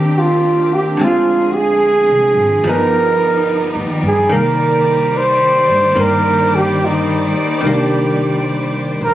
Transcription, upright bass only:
0, 0, Header, 1, 3, 480
1, 0, Start_track
1, 0, Key_signature, -3, "minor"
1, 0, Tempo, 831025
1, 568, Time_signature, 4, 2, 24, 8
1, 5279, End_track
2, 0, Start_track
2, 0, Title_t, "Upright bass"
2, 0, Program_c, 0, 32
2, 0, Note_on_c, 0, 39, 73
2, 542, Note_off_c, 0, 39, 0
2, 567, Note_on_c, 0, 38, 67
2, 1182, Note_off_c, 0, 38, 0
2, 1204, Note_on_c, 0, 36, 58
2, 1351, Note_off_c, 0, 36, 0
2, 1354, Note_on_c, 0, 32, 65
2, 1508, Note_off_c, 0, 32, 0
2, 1521, Note_on_c, 0, 31, 77
2, 2138, Note_off_c, 0, 31, 0
2, 2166, Note_on_c, 0, 39, 59
2, 2313, Note_off_c, 0, 39, 0
2, 2328, Note_on_c, 0, 43, 63
2, 2474, Note_off_c, 0, 43, 0
2, 2484, Note_on_c, 0, 36, 71
2, 3257, Note_off_c, 0, 36, 0
2, 3286, Note_on_c, 0, 43, 65
2, 3435, Note_off_c, 0, 43, 0
2, 3440, Note_on_c, 0, 43, 81
2, 4215, Note_off_c, 0, 43, 0
2, 4403, Note_on_c, 0, 36, 69
2, 5182, Note_off_c, 0, 36, 0
2, 5204, Note_on_c, 0, 34, 57
2, 5279, Note_off_c, 0, 34, 0
2, 5279, End_track
3, 0, Start_track
3, 0, Title_t, "Muted upright bass strokes"
3, 4234, Note_on_c, 9, 29, 39
3, 4291, Note_off_c, 9, 29, 0
3, 5279, End_track
0, 0, End_of_file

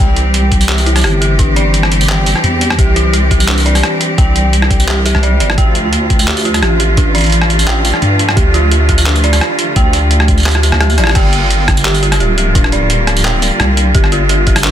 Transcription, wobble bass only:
0, 0, Header, 1, 2, 480
1, 0, Start_track
1, 0, Time_signature, 4, 2, 24, 8
1, 0, Tempo, 348837
1, 20242, End_track
2, 0, Start_track
2, 0, Title_t, "Wobble bass"
2, 0, Program_c, 0, 39
2, 0, Note_on_c, 0, 36, 96
2, 1427, Note_on_c, 0, 31, 81
2, 1448, Note_off_c, 0, 36, 0
2, 3221, Note_off_c, 0, 31, 0
2, 3351, Note_on_c, 0, 40, 97
2, 3818, Note_off_c, 0, 40, 0
2, 3832, Note_on_c, 0, 36, 99
2, 5258, Note_off_c, 0, 36, 0
2, 5753, Note_on_c, 0, 36, 99
2, 7064, Note_off_c, 0, 36, 0
2, 7084, Note_on_c, 0, 36, 102
2, 7436, Note_on_c, 0, 31, 95
2, 7457, Note_off_c, 0, 36, 0
2, 7657, Note_off_c, 0, 31, 0
2, 7675, Note_on_c, 0, 38, 101
2, 9115, Note_on_c, 0, 33, 82
2, 9135, Note_off_c, 0, 38, 0
2, 10904, Note_off_c, 0, 33, 0
2, 11035, Note_on_c, 0, 43, 97
2, 11500, Note_off_c, 0, 43, 0
2, 11514, Note_on_c, 0, 38, 102
2, 12939, Note_off_c, 0, 38, 0
2, 13430, Note_on_c, 0, 38, 101
2, 14742, Note_off_c, 0, 38, 0
2, 14755, Note_on_c, 0, 38, 98
2, 15109, Note_on_c, 0, 33, 96
2, 15130, Note_off_c, 0, 38, 0
2, 15333, Note_off_c, 0, 33, 0
2, 15349, Note_on_c, 0, 31, 98
2, 16793, Note_on_c, 0, 26, 82
2, 16813, Note_off_c, 0, 31, 0
2, 18583, Note_off_c, 0, 26, 0
2, 18712, Note_on_c, 0, 36, 93
2, 19178, Note_off_c, 0, 36, 0
2, 19191, Note_on_c, 0, 31, 100
2, 20242, Note_off_c, 0, 31, 0
2, 20242, End_track
0, 0, End_of_file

